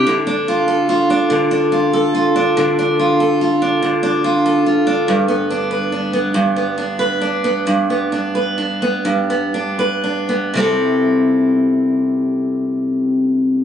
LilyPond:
\new Staff \with { instrumentName = "Steel-string acoustic guitar" } { \time 6/8 \key c \major \tempo 4. = 47 d16 d'16 f'16 a'16 f'16 d'16 d16 d'16 f'16 a'16 f'16 d'16 | d16 d'16 f'16 a'16 f'16 d'16 d16 d'16 f'16 a'16 f'16 d'16 | g,16 b16 d'16 b'16 d'16 b16 g,16 b16 d'16 b'16 d'16 b16 | g,16 b16 d'16 b'16 d'16 b16 g,16 b16 d'16 b'16 d'16 b16 |
<c g c' e' a'>2. | }